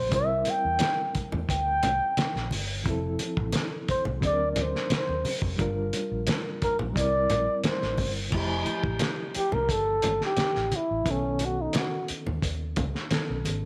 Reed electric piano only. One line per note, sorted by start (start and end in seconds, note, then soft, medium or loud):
0.09 2.80 G3 medium
0.09 2.81 C4 medium
0.09 2.82 E4 medium
0.15 2.83 A#4 medium
2.84 4.18 F3 medium
2.84 4.20 C4 medium
2.88 4.21 E4 medium
2.88 4.22 A4 medium
4.20 5.55 F#3 medium
4.20 5.56 C4 medium
4.24 5.57 D4 medium
4.24 4.31 G#4 medium
4.33 5.60 A#4 medium
5.56 6.91 G3 medium
5.56 6.92 D4 medium
5.60 6.93 F4 medium
5.60 6.94 A#4 medium
6.93 8.28 G3 medium
6.93 8.29 C4 medium
6.93 8.30 E4 medium
6.99 8.31 A#4 medium
8.31 11.01 F3 medium
8.31 11.02 A3 medium
8.31 11.03 E4 medium
8.37 11.04 G4 medium
11.04 13.06 D#3 medium
11.04 13.07 B3 medium
11.04 13.08 C#4 medium
11.09 13.09 A4 medium
13.10 13.65 D#3 medium
13.10 13.65 B3 medium
13.10 13.65 C#4 medium
13.10 13.65 A4 medium